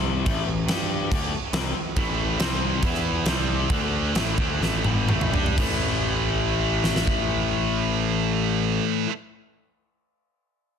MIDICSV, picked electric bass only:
0, 0, Header, 1, 3, 480
1, 0, Start_track
1, 0, Tempo, 425834
1, 300, Time_signature, 4, 2, 24, 8
1, 3180, Tempo, 448430
1, 5100, Tempo, 483871
1, 6060, Tempo, 499584
1, 11060, End_track
2, 0, Start_track
2, 0, Title_t, "Picked electric bass"
2, 0, Program_c, 0, 34
2, 0, Note_on_c, 0, 36, 100
2, 264, Note_off_c, 0, 36, 0
2, 297, Note_on_c, 0, 33, 103
2, 521, Note_off_c, 0, 33, 0
2, 535, Note_on_c, 0, 33, 85
2, 755, Note_off_c, 0, 33, 0
2, 762, Note_on_c, 0, 43, 104
2, 1215, Note_off_c, 0, 43, 0
2, 1257, Note_on_c, 0, 38, 95
2, 1480, Note_off_c, 0, 38, 0
2, 1723, Note_on_c, 0, 36, 95
2, 1952, Note_off_c, 0, 36, 0
2, 2212, Note_on_c, 0, 33, 94
2, 2660, Note_off_c, 0, 33, 0
2, 2695, Note_on_c, 0, 36, 96
2, 3146, Note_off_c, 0, 36, 0
2, 3190, Note_on_c, 0, 40, 101
2, 3618, Note_off_c, 0, 40, 0
2, 3645, Note_on_c, 0, 36, 96
2, 4086, Note_off_c, 0, 36, 0
2, 4117, Note_on_c, 0, 38, 101
2, 4568, Note_off_c, 0, 38, 0
2, 4594, Note_on_c, 0, 33, 97
2, 4828, Note_off_c, 0, 33, 0
2, 4852, Note_on_c, 0, 38, 97
2, 5083, Note_off_c, 0, 38, 0
2, 5097, Note_on_c, 0, 33, 95
2, 5317, Note_off_c, 0, 33, 0
2, 5334, Note_on_c, 0, 31, 102
2, 5555, Note_off_c, 0, 31, 0
2, 5567, Note_on_c, 0, 33, 98
2, 5794, Note_off_c, 0, 33, 0
2, 5810, Note_on_c, 0, 43, 98
2, 6040, Note_off_c, 0, 43, 0
2, 6057, Note_on_c, 0, 33, 96
2, 9135, Note_off_c, 0, 33, 0
2, 11060, End_track
3, 0, Start_track
3, 0, Title_t, "Muted picked electric bass strokes"
3, 1496, Note_on_c, 9, 29, 44
3, 1609, Note_off_c, 9, 29, 0
3, 1978, Note_on_c, 9, 29, 45
3, 2091, Note_off_c, 9, 29, 0
3, 11060, End_track
0, 0, End_of_file